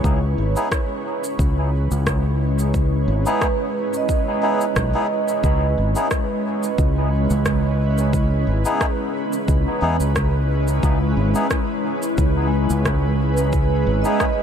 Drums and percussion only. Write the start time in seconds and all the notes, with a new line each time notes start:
0.04 kick, shaker
0.56 shaker
0.72 kick, cross-stick, shaker
1.24 shaker
1.39 kick, shaker
1.91 shaker
2.07 kick, cross-stick, shaker
2.59 shaker
2.74 kick, shaker
3.26 shaker
3.42 kick, cross-stick, shaker
3.94 shaker
4.09 kick, shaker
4.61 shaker
4.76 kick, cross-stick, shaker
5.28 shaker
5.44 kick, shaker
5.96 shaker
6.11 kick, cross-stick, shaker
6.63 shaker
6.78 kick, shaker
7.30 shaker
7.46 kick, cross-stick, shaker
7.98 shaker
8.13 kick, shaker
8.65 shaker
8.81 kick, cross-stick, shaker
9.33 shaker
9.48 kick, shaker
10.00 shaker
10.16 kick, cross-stick, shaker
10.68 shaker
10.83 kick, shaker
11.35 shaker
11.51 kick, cross-stick, shaker
12.03 shaker
12.18 kick, shaker
12.70 shaker
12.85 kick, cross-stick, shaker
13.37 shaker
13.53 kick, shaker
14.05 shaker
14.20 kick, cross-stick, shaker